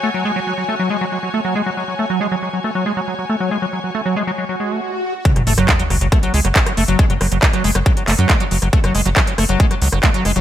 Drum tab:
HH |----------------|----------------|----------------|xxoxxxoxxxoxxxox|
CP |----------------|----------------|----------------|----x-------x---|
SD |----------------|----------------|----------------|-r-r--r-r--r-r--|
BD |----------------|----------------|----------------|o---o---o---o---|

HH |xxoxxxoxxxoxxxox|xxoxxxoxxxoxxxox|
CP |----x-----x-x---|----x-------x---|
SD |r-r--r-r--r-r--r|-r--r-r--r-r--r-|
BD |o---o---o---o---|o---o---o---o---|